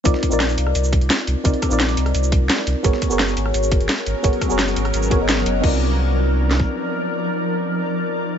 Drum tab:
CC |----------------|----------------|----------------|----------------|
HH |x-x-x-x-x-xxxxx-|xxx-x-xxx-x-x-x-|x-x-x-x-x-xxxxx-|xxx-x-xxx-x-x-x-|
SH |x-xxxxx-xx--x---|x-xxxxx-xx--x---|x-xxxxx-xx--x---|x-xxxxx-xx--x---|
SD |-o--o--r----o---|--r-oo-r----oo--|-o--o--r----o---|--r-oo-r----oo--|
BD |o-o-------o-----|o-o-------o-----|o-o-------o-----|o-o-------o-----|

CC |x---------------|----------------|
HH |----------------|----------------|
SH |----------------|----------------|
SD |----------o-----|----------------|
BD |o----------o----|----------------|